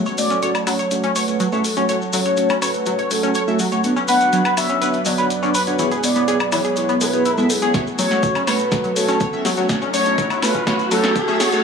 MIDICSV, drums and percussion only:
0, 0, Header, 1, 2, 480
1, 0, Start_track
1, 0, Key_signature, 3, "minor"
1, 0, Tempo, 487805
1, 1859, Time_signature, 4, 2, 24, 8
1, 11450, End_track
2, 0, Start_track
2, 0, Title_t, "Drums"
2, 56, Note_on_c, 9, 70, 28
2, 155, Note_off_c, 9, 70, 0
2, 176, Note_on_c, 9, 70, 88
2, 177, Note_on_c, 9, 46, 99
2, 274, Note_off_c, 9, 70, 0
2, 276, Note_off_c, 9, 46, 0
2, 299, Note_on_c, 9, 42, 51
2, 305, Note_on_c, 9, 70, 36
2, 397, Note_off_c, 9, 42, 0
2, 403, Note_off_c, 9, 70, 0
2, 417, Note_on_c, 9, 70, 50
2, 418, Note_on_c, 9, 42, 78
2, 516, Note_off_c, 9, 70, 0
2, 517, Note_off_c, 9, 42, 0
2, 539, Note_on_c, 9, 42, 34
2, 539, Note_on_c, 9, 70, 27
2, 539, Note_on_c, 9, 76, 70
2, 637, Note_off_c, 9, 70, 0
2, 638, Note_off_c, 9, 42, 0
2, 638, Note_off_c, 9, 76, 0
2, 658, Note_on_c, 9, 46, 97
2, 658, Note_on_c, 9, 76, 53
2, 662, Note_on_c, 9, 70, 77
2, 756, Note_off_c, 9, 46, 0
2, 756, Note_off_c, 9, 76, 0
2, 760, Note_off_c, 9, 70, 0
2, 778, Note_on_c, 9, 70, 38
2, 779, Note_on_c, 9, 42, 51
2, 877, Note_off_c, 9, 70, 0
2, 878, Note_off_c, 9, 42, 0
2, 895, Note_on_c, 9, 70, 49
2, 898, Note_on_c, 9, 42, 81
2, 993, Note_off_c, 9, 70, 0
2, 996, Note_off_c, 9, 42, 0
2, 1017, Note_on_c, 9, 70, 23
2, 1020, Note_on_c, 9, 42, 36
2, 1115, Note_off_c, 9, 70, 0
2, 1118, Note_off_c, 9, 42, 0
2, 1138, Note_on_c, 9, 46, 96
2, 1139, Note_on_c, 9, 70, 91
2, 1237, Note_off_c, 9, 46, 0
2, 1237, Note_off_c, 9, 70, 0
2, 1260, Note_on_c, 9, 42, 52
2, 1260, Note_on_c, 9, 70, 38
2, 1358, Note_off_c, 9, 42, 0
2, 1359, Note_off_c, 9, 70, 0
2, 1377, Note_on_c, 9, 70, 45
2, 1378, Note_on_c, 9, 42, 76
2, 1475, Note_off_c, 9, 70, 0
2, 1476, Note_off_c, 9, 42, 0
2, 1498, Note_on_c, 9, 70, 26
2, 1597, Note_off_c, 9, 70, 0
2, 1616, Note_on_c, 9, 70, 85
2, 1618, Note_on_c, 9, 46, 94
2, 1715, Note_off_c, 9, 70, 0
2, 1716, Note_off_c, 9, 46, 0
2, 1739, Note_on_c, 9, 70, 35
2, 1740, Note_on_c, 9, 42, 52
2, 1837, Note_off_c, 9, 70, 0
2, 1838, Note_off_c, 9, 42, 0
2, 1859, Note_on_c, 9, 42, 76
2, 1859, Note_on_c, 9, 70, 52
2, 1957, Note_off_c, 9, 42, 0
2, 1957, Note_off_c, 9, 70, 0
2, 1983, Note_on_c, 9, 70, 27
2, 2081, Note_off_c, 9, 70, 0
2, 2094, Note_on_c, 9, 70, 89
2, 2098, Note_on_c, 9, 46, 101
2, 2192, Note_off_c, 9, 70, 0
2, 2197, Note_off_c, 9, 46, 0
2, 2216, Note_on_c, 9, 70, 35
2, 2220, Note_on_c, 9, 42, 50
2, 2314, Note_off_c, 9, 70, 0
2, 2318, Note_off_c, 9, 42, 0
2, 2329, Note_on_c, 9, 70, 48
2, 2338, Note_on_c, 9, 42, 76
2, 2427, Note_off_c, 9, 70, 0
2, 2437, Note_off_c, 9, 42, 0
2, 2454, Note_on_c, 9, 70, 27
2, 2460, Note_on_c, 9, 42, 35
2, 2460, Note_on_c, 9, 76, 70
2, 2552, Note_off_c, 9, 70, 0
2, 2558, Note_off_c, 9, 42, 0
2, 2558, Note_off_c, 9, 76, 0
2, 2578, Note_on_c, 9, 46, 102
2, 2578, Note_on_c, 9, 76, 53
2, 2580, Note_on_c, 9, 70, 88
2, 2677, Note_off_c, 9, 46, 0
2, 2677, Note_off_c, 9, 76, 0
2, 2678, Note_off_c, 9, 70, 0
2, 2700, Note_on_c, 9, 42, 51
2, 2701, Note_on_c, 9, 70, 38
2, 2798, Note_off_c, 9, 42, 0
2, 2799, Note_off_c, 9, 70, 0
2, 2811, Note_on_c, 9, 70, 49
2, 2819, Note_on_c, 9, 42, 77
2, 2910, Note_off_c, 9, 70, 0
2, 2917, Note_off_c, 9, 42, 0
2, 2939, Note_on_c, 9, 70, 23
2, 2940, Note_on_c, 9, 42, 34
2, 3038, Note_off_c, 9, 42, 0
2, 3038, Note_off_c, 9, 70, 0
2, 3058, Note_on_c, 9, 70, 89
2, 3059, Note_on_c, 9, 46, 105
2, 3156, Note_off_c, 9, 70, 0
2, 3157, Note_off_c, 9, 46, 0
2, 3180, Note_on_c, 9, 42, 51
2, 3184, Note_on_c, 9, 70, 40
2, 3279, Note_off_c, 9, 42, 0
2, 3283, Note_off_c, 9, 70, 0
2, 3290, Note_on_c, 9, 70, 52
2, 3299, Note_on_c, 9, 42, 78
2, 3388, Note_off_c, 9, 70, 0
2, 3397, Note_off_c, 9, 42, 0
2, 3422, Note_on_c, 9, 70, 28
2, 3520, Note_off_c, 9, 70, 0
2, 3534, Note_on_c, 9, 70, 89
2, 3539, Note_on_c, 9, 46, 103
2, 3632, Note_off_c, 9, 70, 0
2, 3637, Note_off_c, 9, 46, 0
2, 3659, Note_on_c, 9, 70, 41
2, 3660, Note_on_c, 9, 42, 51
2, 3757, Note_off_c, 9, 70, 0
2, 3759, Note_off_c, 9, 42, 0
2, 3777, Note_on_c, 9, 70, 49
2, 3779, Note_on_c, 9, 42, 75
2, 3875, Note_off_c, 9, 70, 0
2, 3878, Note_off_c, 9, 42, 0
2, 3901, Note_on_c, 9, 70, 29
2, 4000, Note_off_c, 9, 70, 0
2, 4013, Note_on_c, 9, 70, 99
2, 4019, Note_on_c, 9, 46, 107
2, 4111, Note_off_c, 9, 70, 0
2, 4117, Note_off_c, 9, 46, 0
2, 4140, Note_on_c, 9, 42, 47
2, 4141, Note_on_c, 9, 70, 42
2, 4239, Note_off_c, 9, 42, 0
2, 4240, Note_off_c, 9, 70, 0
2, 4258, Note_on_c, 9, 70, 57
2, 4259, Note_on_c, 9, 42, 73
2, 4356, Note_off_c, 9, 70, 0
2, 4357, Note_off_c, 9, 42, 0
2, 4378, Note_on_c, 9, 70, 26
2, 4380, Note_on_c, 9, 42, 33
2, 4380, Note_on_c, 9, 76, 72
2, 4476, Note_off_c, 9, 70, 0
2, 4479, Note_off_c, 9, 42, 0
2, 4479, Note_off_c, 9, 76, 0
2, 4499, Note_on_c, 9, 46, 103
2, 4499, Note_on_c, 9, 76, 58
2, 4501, Note_on_c, 9, 70, 95
2, 4598, Note_off_c, 9, 46, 0
2, 4598, Note_off_c, 9, 76, 0
2, 4600, Note_off_c, 9, 70, 0
2, 4617, Note_on_c, 9, 70, 39
2, 4621, Note_on_c, 9, 42, 50
2, 4715, Note_off_c, 9, 70, 0
2, 4719, Note_off_c, 9, 42, 0
2, 4739, Note_on_c, 9, 42, 75
2, 4747, Note_on_c, 9, 70, 51
2, 4837, Note_off_c, 9, 42, 0
2, 4846, Note_off_c, 9, 70, 0
2, 4851, Note_on_c, 9, 70, 24
2, 4860, Note_on_c, 9, 42, 33
2, 4949, Note_off_c, 9, 70, 0
2, 4959, Note_off_c, 9, 42, 0
2, 4971, Note_on_c, 9, 70, 90
2, 4979, Note_on_c, 9, 46, 100
2, 5069, Note_off_c, 9, 70, 0
2, 5077, Note_off_c, 9, 46, 0
2, 5096, Note_on_c, 9, 70, 39
2, 5100, Note_on_c, 9, 42, 50
2, 5195, Note_off_c, 9, 70, 0
2, 5199, Note_off_c, 9, 42, 0
2, 5219, Note_on_c, 9, 42, 75
2, 5222, Note_on_c, 9, 70, 49
2, 5317, Note_off_c, 9, 42, 0
2, 5321, Note_off_c, 9, 70, 0
2, 5341, Note_on_c, 9, 70, 28
2, 5440, Note_off_c, 9, 70, 0
2, 5455, Note_on_c, 9, 70, 85
2, 5458, Note_on_c, 9, 46, 108
2, 5553, Note_off_c, 9, 70, 0
2, 5557, Note_off_c, 9, 46, 0
2, 5580, Note_on_c, 9, 42, 48
2, 5583, Note_on_c, 9, 70, 36
2, 5678, Note_off_c, 9, 42, 0
2, 5682, Note_off_c, 9, 70, 0
2, 5695, Note_on_c, 9, 70, 55
2, 5699, Note_on_c, 9, 42, 71
2, 5793, Note_off_c, 9, 70, 0
2, 5797, Note_off_c, 9, 42, 0
2, 5820, Note_on_c, 9, 42, 33
2, 5821, Note_on_c, 9, 70, 29
2, 5918, Note_off_c, 9, 42, 0
2, 5920, Note_off_c, 9, 70, 0
2, 5939, Note_on_c, 9, 46, 105
2, 5939, Note_on_c, 9, 70, 97
2, 6037, Note_off_c, 9, 46, 0
2, 6037, Note_off_c, 9, 70, 0
2, 6054, Note_on_c, 9, 70, 40
2, 6061, Note_on_c, 9, 42, 50
2, 6152, Note_off_c, 9, 70, 0
2, 6159, Note_off_c, 9, 42, 0
2, 6179, Note_on_c, 9, 42, 75
2, 6180, Note_on_c, 9, 70, 50
2, 6277, Note_off_c, 9, 42, 0
2, 6278, Note_off_c, 9, 70, 0
2, 6294, Note_on_c, 9, 70, 26
2, 6300, Note_on_c, 9, 42, 33
2, 6300, Note_on_c, 9, 76, 78
2, 6393, Note_off_c, 9, 70, 0
2, 6399, Note_off_c, 9, 42, 0
2, 6399, Note_off_c, 9, 76, 0
2, 6416, Note_on_c, 9, 70, 99
2, 6419, Note_on_c, 9, 46, 107
2, 6419, Note_on_c, 9, 76, 60
2, 6514, Note_off_c, 9, 70, 0
2, 6517, Note_off_c, 9, 46, 0
2, 6517, Note_off_c, 9, 76, 0
2, 6539, Note_on_c, 9, 70, 37
2, 6540, Note_on_c, 9, 42, 48
2, 6637, Note_off_c, 9, 70, 0
2, 6639, Note_off_c, 9, 42, 0
2, 6654, Note_on_c, 9, 70, 56
2, 6659, Note_on_c, 9, 42, 74
2, 6752, Note_off_c, 9, 70, 0
2, 6758, Note_off_c, 9, 42, 0
2, 6779, Note_on_c, 9, 70, 23
2, 6780, Note_on_c, 9, 42, 33
2, 6877, Note_off_c, 9, 70, 0
2, 6879, Note_off_c, 9, 42, 0
2, 6895, Note_on_c, 9, 70, 90
2, 6899, Note_on_c, 9, 46, 107
2, 6994, Note_off_c, 9, 70, 0
2, 6997, Note_off_c, 9, 46, 0
2, 7020, Note_on_c, 9, 42, 48
2, 7024, Note_on_c, 9, 70, 41
2, 7118, Note_off_c, 9, 42, 0
2, 7123, Note_off_c, 9, 70, 0
2, 7137, Note_on_c, 9, 70, 49
2, 7139, Note_on_c, 9, 42, 76
2, 7235, Note_off_c, 9, 70, 0
2, 7237, Note_off_c, 9, 42, 0
2, 7258, Note_on_c, 9, 70, 27
2, 7357, Note_off_c, 9, 70, 0
2, 7377, Note_on_c, 9, 70, 84
2, 7378, Note_on_c, 9, 46, 107
2, 7475, Note_off_c, 9, 70, 0
2, 7477, Note_off_c, 9, 46, 0
2, 7497, Note_on_c, 9, 70, 41
2, 7500, Note_on_c, 9, 42, 47
2, 7595, Note_off_c, 9, 70, 0
2, 7598, Note_off_c, 9, 42, 0
2, 7618, Note_on_c, 9, 70, 56
2, 7619, Note_on_c, 9, 36, 112
2, 7619, Note_on_c, 9, 38, 46
2, 7619, Note_on_c, 9, 42, 74
2, 7717, Note_off_c, 9, 36, 0
2, 7717, Note_off_c, 9, 38, 0
2, 7717, Note_off_c, 9, 42, 0
2, 7717, Note_off_c, 9, 70, 0
2, 7743, Note_on_c, 9, 70, 26
2, 7842, Note_off_c, 9, 70, 0
2, 7858, Note_on_c, 9, 70, 92
2, 7859, Note_on_c, 9, 46, 104
2, 7957, Note_off_c, 9, 46, 0
2, 7957, Note_off_c, 9, 70, 0
2, 7980, Note_on_c, 9, 38, 43
2, 7980, Note_on_c, 9, 42, 48
2, 7981, Note_on_c, 9, 70, 38
2, 8078, Note_off_c, 9, 38, 0
2, 8078, Note_off_c, 9, 42, 0
2, 8079, Note_off_c, 9, 70, 0
2, 8097, Note_on_c, 9, 70, 51
2, 8098, Note_on_c, 9, 42, 73
2, 8099, Note_on_c, 9, 36, 115
2, 8196, Note_off_c, 9, 70, 0
2, 8197, Note_off_c, 9, 36, 0
2, 8197, Note_off_c, 9, 42, 0
2, 8219, Note_on_c, 9, 42, 35
2, 8219, Note_on_c, 9, 76, 79
2, 8220, Note_on_c, 9, 70, 24
2, 8318, Note_off_c, 9, 42, 0
2, 8318, Note_off_c, 9, 76, 0
2, 8319, Note_off_c, 9, 70, 0
2, 8338, Note_on_c, 9, 38, 50
2, 8338, Note_on_c, 9, 46, 106
2, 8338, Note_on_c, 9, 76, 63
2, 8340, Note_on_c, 9, 70, 83
2, 8437, Note_off_c, 9, 38, 0
2, 8437, Note_off_c, 9, 46, 0
2, 8437, Note_off_c, 9, 76, 0
2, 8438, Note_off_c, 9, 70, 0
2, 8458, Note_on_c, 9, 70, 37
2, 8460, Note_on_c, 9, 42, 48
2, 8557, Note_off_c, 9, 70, 0
2, 8558, Note_off_c, 9, 42, 0
2, 8576, Note_on_c, 9, 70, 54
2, 8578, Note_on_c, 9, 36, 115
2, 8578, Note_on_c, 9, 38, 52
2, 8578, Note_on_c, 9, 42, 77
2, 8674, Note_off_c, 9, 70, 0
2, 8677, Note_off_c, 9, 36, 0
2, 8677, Note_off_c, 9, 38, 0
2, 8677, Note_off_c, 9, 42, 0
2, 8697, Note_on_c, 9, 70, 25
2, 8700, Note_on_c, 9, 42, 34
2, 8796, Note_off_c, 9, 70, 0
2, 8798, Note_off_c, 9, 42, 0
2, 8818, Note_on_c, 9, 46, 104
2, 8821, Note_on_c, 9, 70, 90
2, 8917, Note_off_c, 9, 46, 0
2, 8919, Note_off_c, 9, 70, 0
2, 8937, Note_on_c, 9, 70, 38
2, 8940, Note_on_c, 9, 42, 52
2, 9036, Note_off_c, 9, 70, 0
2, 9039, Note_off_c, 9, 42, 0
2, 9055, Note_on_c, 9, 70, 56
2, 9058, Note_on_c, 9, 36, 118
2, 9059, Note_on_c, 9, 42, 77
2, 9153, Note_off_c, 9, 70, 0
2, 9157, Note_off_c, 9, 36, 0
2, 9157, Note_off_c, 9, 42, 0
2, 9181, Note_on_c, 9, 70, 25
2, 9279, Note_off_c, 9, 70, 0
2, 9299, Note_on_c, 9, 38, 54
2, 9299, Note_on_c, 9, 46, 101
2, 9304, Note_on_c, 9, 70, 98
2, 9397, Note_off_c, 9, 38, 0
2, 9397, Note_off_c, 9, 46, 0
2, 9403, Note_off_c, 9, 70, 0
2, 9417, Note_on_c, 9, 70, 39
2, 9419, Note_on_c, 9, 42, 49
2, 9515, Note_off_c, 9, 70, 0
2, 9518, Note_off_c, 9, 42, 0
2, 9536, Note_on_c, 9, 70, 49
2, 9538, Note_on_c, 9, 36, 116
2, 9538, Note_on_c, 9, 38, 58
2, 9538, Note_on_c, 9, 42, 78
2, 9634, Note_off_c, 9, 70, 0
2, 9637, Note_off_c, 9, 36, 0
2, 9637, Note_off_c, 9, 38, 0
2, 9637, Note_off_c, 9, 42, 0
2, 9659, Note_on_c, 9, 70, 26
2, 9757, Note_off_c, 9, 70, 0
2, 9778, Note_on_c, 9, 46, 99
2, 9780, Note_on_c, 9, 70, 91
2, 9876, Note_off_c, 9, 46, 0
2, 9878, Note_off_c, 9, 70, 0
2, 9894, Note_on_c, 9, 70, 39
2, 9899, Note_on_c, 9, 42, 50
2, 9992, Note_off_c, 9, 70, 0
2, 9998, Note_off_c, 9, 42, 0
2, 10018, Note_on_c, 9, 36, 109
2, 10018, Note_on_c, 9, 42, 78
2, 10022, Note_on_c, 9, 70, 55
2, 10116, Note_off_c, 9, 42, 0
2, 10117, Note_off_c, 9, 36, 0
2, 10120, Note_off_c, 9, 70, 0
2, 10139, Note_on_c, 9, 42, 35
2, 10139, Note_on_c, 9, 76, 80
2, 10142, Note_on_c, 9, 70, 26
2, 10237, Note_off_c, 9, 42, 0
2, 10237, Note_off_c, 9, 76, 0
2, 10241, Note_off_c, 9, 70, 0
2, 10258, Note_on_c, 9, 38, 62
2, 10258, Note_on_c, 9, 46, 99
2, 10258, Note_on_c, 9, 76, 61
2, 10268, Note_on_c, 9, 70, 92
2, 10356, Note_off_c, 9, 38, 0
2, 10356, Note_off_c, 9, 46, 0
2, 10356, Note_off_c, 9, 76, 0
2, 10366, Note_off_c, 9, 70, 0
2, 10376, Note_on_c, 9, 70, 38
2, 10379, Note_on_c, 9, 36, 59
2, 10379, Note_on_c, 9, 42, 50
2, 10474, Note_off_c, 9, 70, 0
2, 10477, Note_off_c, 9, 42, 0
2, 10478, Note_off_c, 9, 36, 0
2, 10498, Note_on_c, 9, 36, 114
2, 10498, Note_on_c, 9, 38, 67
2, 10498, Note_on_c, 9, 42, 82
2, 10500, Note_on_c, 9, 70, 50
2, 10596, Note_off_c, 9, 36, 0
2, 10596, Note_off_c, 9, 38, 0
2, 10596, Note_off_c, 9, 42, 0
2, 10598, Note_off_c, 9, 70, 0
2, 10619, Note_on_c, 9, 42, 35
2, 10619, Note_on_c, 9, 70, 25
2, 10718, Note_off_c, 9, 42, 0
2, 10718, Note_off_c, 9, 70, 0
2, 10738, Note_on_c, 9, 46, 99
2, 10738, Note_on_c, 9, 70, 84
2, 10836, Note_off_c, 9, 70, 0
2, 10837, Note_off_c, 9, 46, 0
2, 10859, Note_on_c, 9, 38, 61
2, 10859, Note_on_c, 9, 42, 51
2, 10860, Note_on_c, 9, 70, 34
2, 10958, Note_off_c, 9, 38, 0
2, 10958, Note_off_c, 9, 42, 0
2, 10959, Note_off_c, 9, 70, 0
2, 10978, Note_on_c, 9, 36, 116
2, 10978, Note_on_c, 9, 42, 78
2, 10979, Note_on_c, 9, 70, 54
2, 11076, Note_off_c, 9, 36, 0
2, 11076, Note_off_c, 9, 42, 0
2, 11077, Note_off_c, 9, 70, 0
2, 11098, Note_on_c, 9, 70, 26
2, 11196, Note_off_c, 9, 70, 0
2, 11218, Note_on_c, 9, 38, 70
2, 11218, Note_on_c, 9, 46, 100
2, 11218, Note_on_c, 9, 70, 89
2, 11316, Note_off_c, 9, 38, 0
2, 11316, Note_off_c, 9, 46, 0
2, 11317, Note_off_c, 9, 70, 0
2, 11340, Note_on_c, 9, 42, 50
2, 11348, Note_on_c, 9, 70, 34
2, 11438, Note_off_c, 9, 42, 0
2, 11446, Note_off_c, 9, 70, 0
2, 11450, End_track
0, 0, End_of_file